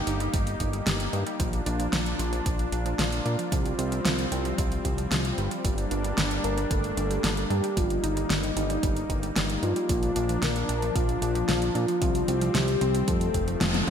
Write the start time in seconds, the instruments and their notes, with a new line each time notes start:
Already playing: analog synth pad A#3 D#4 G4
0.07 analog synth bass G1, synth arpeggio sound D#4, closed hi-hat
0.20 synth arpeggio sound G3, closed hi-hat
0.34 analog synth bass G1, synth arpeggio sound G3, kick, closed hi-hat
0.47 closed hi-hat
0.60 analog synth bass G1, synth arpeggio sound D#4, kick, closed hi-hat
0.73 synth arpeggio sound G3, closed hi-hat
0.87 analog synth bass G1, synth arpeggio sound G3, snare, closed hi-hat
1.00 closed hi-hat
1.13 analog synth bass G2, synth arpeggio sound D#4, closed hi-hat
1.26 synth arpeggio sound G3, closed hi-hat
1.40 analog synth bass A#1, synth arpeggio sound F3, analog synth pad D4 F4, kick, closed hi-hat
1.53 closed hi-hat
1.66 analog synth bass A#1, synth arpeggio sound D4, closed hi-hat
1.80 synth arpeggio sound F3, closed hi-hat
1.93 analog synth bass A#1, synth arpeggio sound F3, snare, closed hi-hat
2.06 closed hi-hat
2.19 analog synth bass A#1, synth arpeggio sound D4, closed hi-hat
2.33 synth arpeggio sound F3, closed hi-hat
2.46 analog synth bass A#1, synth arpeggio sound F3, kick, closed hi-hat
2.59 closed hi-hat
2.72 analog synth bass A#1, synth arpeggio sound D4, closed hi-hat
2.86 synth arpeggio sound F3, closed hi-hat
2.99 analog synth bass A#1, synth arpeggio sound F3, snare, closed hi-hat
3.12 closed hi-hat
3.26 analog synth bass A#2, synth arpeggio sound D4, closed hi-hat
3.39 synth arpeggio sound F3, closed hi-hat
3.52 analog synth bass C2, synth arpeggio sound F3, analog synth pad G3 C4, kick, closed hi-hat
3.66 closed hi-hat
3.79 analog synth bass C2, synth arpeggio sound C4, closed hi-hat
3.92 synth arpeggio sound F3, closed hi-hat
4.05 analog synth bass C2, synth arpeggio sound F3, snare, closed hi-hat
4.19 closed hi-hat
4.32 analog synth bass C2, synth arpeggio sound C4, closed hi-hat
4.45 synth arpeggio sound F3, closed hi-hat
4.58 analog synth bass C2, synth arpeggio sound F3, kick, closed hi-hat
4.72 closed hi-hat
4.85 analog synth bass C2, synth arpeggio sound C4, kick, closed hi-hat
4.98 synth arpeggio sound F3, closed hi-hat
5.11 analog synth bass C2, synth arpeggio sound F3, snare, closed hi-hat
5.25 closed hi-hat
5.38 analog synth bass G1, synth arpeggio sound C4, closed hi-hat
5.51 synth arpeggio sound F3, closed hi-hat
5.64 analog synth bass G1, synth arpeggio sound G3, analog synth pad A#3 D4, kick, closed hi-hat
5.78 closed hi-hat
5.91 analog synth bass G1, synth arpeggio sound D4, closed hi-hat
6.04 synth arpeggio sound G3, closed hi-hat
6.18 analog synth bass G1, synth arpeggio sound G3, snare, closed hi-hat
6.31 closed hi-hat
6.44 analog synth bass G1, synth arpeggio sound D4, soft synth lead A#4, closed hi-hat
6.58 synth arpeggio sound G3, closed hi-hat
6.71 analog synth bass G1, synth arpeggio sound G3, soft synth lead A4, kick, closed hi-hat
6.84 closed hi-hat
6.97 analog synth bass G1, synth arpeggio sound D4, closed hi-hat
7.11 synth arpeggio sound G3, closed hi-hat
7.24 analog synth bass G1, synth arpeggio sound G3, snare, closed hi-hat
7.37 closed hi-hat
7.50 analog synth bass G2, synth arpeggio sound D4, soft synth lead G4, closed hi-hat
7.64 synth arpeggio sound G3, closed hi-hat
7.77 analog synth bass G1, synth arpeggio sound G3, analog synth pad D#4, soft synth lead F4, kick, closed hi-hat
7.90 closed hi-hat
8.03 analog synth bass G1, synth arpeggio sound D#4, soft synth lead D#4, closed hi-hat
8.17 synth arpeggio sound G3, closed hi-hat
8.30 analog synth bass G1, synth arpeggio sound G3, snare, closed hi-hat
8.43 closed hi-hat
8.57 analog synth bass G1, synth arpeggio sound D#4, closed hi-hat
8.70 synth arpeggio sound G3, closed hi-hat
8.83 analog synth bass G1, synth arpeggio sound G3, kick, closed hi-hat
8.97 closed hi-hat
9.10 analog synth bass G1, synth arpeggio sound D#4, kick, closed hi-hat
9.23 synth arpeggio sound G3, closed hi-hat
9.36 analog synth bass G1, synth arpeggio sound G3, snare, closed hi-hat
9.50 closed hi-hat
9.63 analog synth bass G2, synth arpeggio sound D#4, soft synth lead F4, closed hi-hat
9.76 synth arpeggio sound G3, closed hi-hat
9.89 analog synth bass A#1, analog synth pad F3 D4, synth arpeggio sound F3, soft synth lead F4, kick, closed hi-hat
10.03 closed hi-hat
10.16 analog synth bass A#1, synth arpeggio sound D4, closed hi-hat
10.29 synth arpeggio sound F3, closed hi-hat
10.42 analog synth bass A#1, synth arpeggio sound F3, soft synth lead A#4, snare, closed hi-hat
10.56 closed hi-hat
10.69 analog synth bass A#1, synth arpeggio sound D4, closed hi-hat
10.82 synth arpeggio sound F3, closed hi-hat
10.95 analog synth bass A#1, synth arpeggio sound F3, soft synth lead F4, kick, closed hi-hat
11.09 closed hi-hat
11.22 analog synth bass A#1, synth arpeggio sound D4, closed hi-hat
11.35 synth arpeggio sound F3, closed hi-hat
11.48 analog synth bass A#1, synth arpeggio sound F3, snare, closed hi-hat
11.62 closed hi-hat
11.75 analog synth bass A#2, synth arpeggio sound D4, soft synth lead F4, closed hi-hat
11.88 synth arpeggio sound F3, closed hi-hat
12.02 analog synth bass C2, synth arpeggio sound F3, analog synth pad G3 C4, kick, closed hi-hat
12.15 closed hi-hat
12.28 analog synth bass C2, synth arpeggio sound C4, closed hi-hat
12.41 synth arpeggio sound F3, closed hi-hat
12.55 analog synth bass C2, synth arpeggio sound F3, soft synth lead G4, snare, closed hi-hat
12.68 closed hi-hat
12.81 analog synth bass C2, synth arpeggio sound C4, closed hi-hat
12.95 synth arpeggio sound F3, closed hi-hat
13.08 analog synth bass F2, analog synth pad F3 A3, synth arpeggio sound F3, soft synth lead A4, kick, closed hi-hat
13.21 closed hi-hat
13.34 analog synth bass F1, synth arpeggio sound C4, kick, closed hi-hat
13.48 synth arpeggio sound F3, closed hi-hat
13.61 analog synth bass F1, synth arpeggio sound F3, snare, closed hi-hat, high tom
13.74 closed hi-hat, high tom